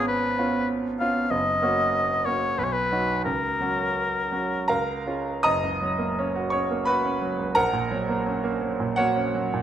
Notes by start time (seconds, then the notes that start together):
Already playing: G#1 B3 C#4 F4
0.08 B4
0.39 B3 C#4 F4
0.99 B3 C#4 F4 F5
1.30 F#1 D#5
1.62 A#3 C#4 F#4
2.25 A#3 C#4 F#4 C#5
2.58 B1 B4
2.63 C#5
2.72 B4
2.91 F#3 D#4 F#4
3.24 C#2 A#4
3.60 F#3 C#4 F#4
4.32 F#3 C#4 F#4
4.68 C#2 A#4 F5 A#5
5.06 G#3 C#4 F4
5.43 F#1 D#5 A#5 D#6
5.63 C#2
5.82 F#3
5.98 A#3
6.19 C#4
6.35 F#4
6.50 C#4 C#5 C#6
6.71 A#3
6.85 F#4 B4 B5
7.05 C#4
7.22 F#3
7.39 C#2
7.55 A#1 A#4 F#5 A#5
7.73 A#2
7.91 F#3
8.09 A#3
8.27 C#4
8.44 A#3
8.61 F#3
8.80 A#2
8.96 A#3 F#4 C#5 F#5
9.16 C#4
9.35 F#3
9.54 A#2